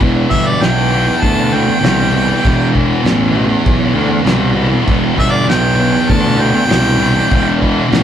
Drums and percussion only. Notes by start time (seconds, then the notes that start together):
0.01 kick, crash
0.31 kick
0.61 snare, crash
1.22 kick, crash
1.84 snare, crash
2.45 kick, crash
2.75 kick
3.05 snare, crash
3.66 kick, crash
4.26 snare, crash
4.88 kick, crash
5.18 kick
5.49 snare, crash
6.09 kick, crash
6.70 snare, crash
7.31 kick, crash
7.62 kick
7.92 snare, crash